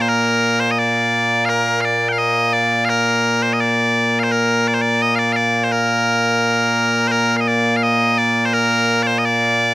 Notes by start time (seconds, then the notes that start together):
Already playing: A#2 A#3
0.01 C5
0.09 A#4
0.60 C5
0.71 D#5
0.79 D5
1.45 A#4 F5
1.81 D5 F5
2.09 F5 G5
2.18 D#5
2.53 D5
2.85 F5
2.89 A#4
3.43 C5
3.53 D#5
3.60 D5
4.19 C5 F5
4.32 A#4
4.68 D5
4.74 C5
4.81 D5
5.02 D#5
5.16 D5 F5
5.33 D5 F5
5.64 C5
5.72 A#4
7.08 A#4 C5
7.37 D#5 F5
7.48 D5
7.77 F5
7.83 D#5
8.18 D5
8.45 C5
8.54 A#4
9.03 C5 D5
9.18 D#5
9.25 D5